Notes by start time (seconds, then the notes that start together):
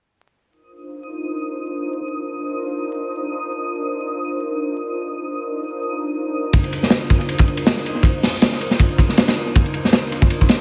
0.50 D4 D#4 F4 A#4 C5 D#6
2.01 D4 D#4 F4 A#4 C5
3.51 D4 D#4 F4 A#4 C5
5.02 D4 D#4 F4 A#4 C5
6.53 D4 D#4 F4 A#4 C5, kick, ride
6.64 ride
6.73 ride
6.83 snare
6.90 snare, ride
7.10 kick, ride
7.21 ride
7.29 ride
7.38 kick, ride
7.48 ride
7.57 ride
7.67 snare, ride
7.77 snare
7.86 ride
8.03 D4 D#4 F4 A#4 C5, kick, ride
8.23 snare, open hi-hat
8.42 snare, ride
8.52 snare
8.61 ride
8.71 snare
8.80 kick, ride
8.98 kick, ride
9.09 snare
9.17 snare, ride
9.28 snare, ride
9.55 D4 D#4 F4 A#4 C5, kick, ride
9.66 ride
9.74 ride
9.85 snare
9.93 snare, ride
10.12 ride
10.22 kick
10.30 ride
10.41 kick
10.49 snare, ride